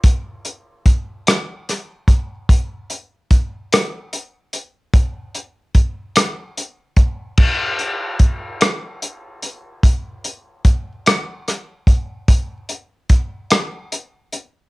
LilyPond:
\new DrumStaff \with { instrumentName = "Drums" } \drummode { \time 6/8 \tempo 4. = 49 <hh bd>8 hh8 <hh bd>8 <hh ss>8 <hh ss>8 <hh bd>8 | <hh bd>8 hh8 <hh bd>8 <hh ss>8 hh8 hh8 | <hh bd>8 hh8 <hh bd>8 <hh ss>8 hh8 <hh bd>8 | <cymc bd>8 hh8 <hh bd>8 <hh ss>8 hh8 hh8 |
<hh bd>8 hh8 <hh bd>8 <hh ss>8 <hh ss>8 <hh bd>8 | <hh bd>8 hh8 <hh bd>8 <hh ss>8 hh8 hh8 | }